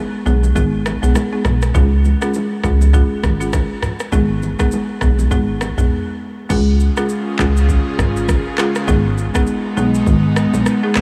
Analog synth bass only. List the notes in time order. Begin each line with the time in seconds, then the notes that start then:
0.26 B1
0.56 G#1
1.03 B1
1.45 B1
1.75 C#2
2.64 C#2
3.23 G#1
4.12 G#1
5.02 B1
5.31 G#1
5.78 B1
6.50 C#2
7.39 C#2
7.99 G#1
8.88 G#1
9.77 B1
10.06 G#1
10.54 B1
10.96 B1